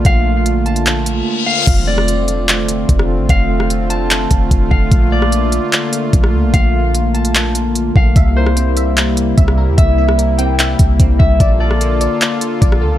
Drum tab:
CC |----------------|x---------------|----------------|----------------|
HH |x---x-xxx-x-----|x---x-x-x-x-x---|x---x-x-x-x-x---|x---x-x-x-x-x---|
CP |--------x-------|--------x-------|--------x-------|--------x-------|
SD |----------------|---r---------r--|---r------------|---r---------r--|
BD |o---------------|o-----------o---|o---------o-o-o-|o-----------o---|

CC |----------------|----------------|----------------|----------------|
HH |x---x-xxx-x-x---|x---x-x-x-x-x---|x---x-x-x-x-x---|x---x-x-x-x-x---|
CP |--------x-------|--------x-------|--------x-------|--------x-------|
SD |----------------|---r---------r--|---r------------|---r---------r--|
BD |o-------------o-|o-----------o---|o---------o-o-o-|o-----------o---|